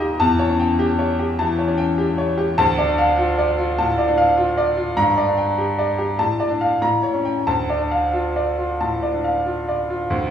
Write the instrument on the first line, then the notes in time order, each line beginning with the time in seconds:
grand piano
Already playing: A#2 D#4 D#5 G5 A#5
0.00 G4
0.20 E2 A5
0.39 C#5
0.50 C#4
0.59 G5
0.79 G4
0.99 C#5
1.19 G4
1.39 E3 A5
1.58 C#5
1.68 C#4
1.78 G5
1.98 G4
2.18 C#5
2.38 G4
2.58 D2 A5
2.78 D5
2.88 D4
2.98 F5
3.18 F4
3.38 D5
3.58 F4
3.78 A2 A5
3.98 D5
4.08 D4
4.18 F5
4.37 F4
4.57 D5
4.77 F4
4.97 G2 A#5
5.17 D5
5.28 D4
5.38 G5
5.58 G4
5.79 D5
5.98 G4
6.19 A2 A5
6.40 D5
6.50 D4
6.61 F5
6.82 A2 A#5
7.03 C#5
7.14 C#4
7.25 G5
7.47 D2 A5
7.70 D5
7.80 D4
7.91 F5
8.13 F4
8.36 D5
8.58 F4
8.81 A2 A5
9.03 D5
9.14 D4
9.24 F5
9.46 F4
9.69 D5
9.90 F4
10.10 D2
10.26 A2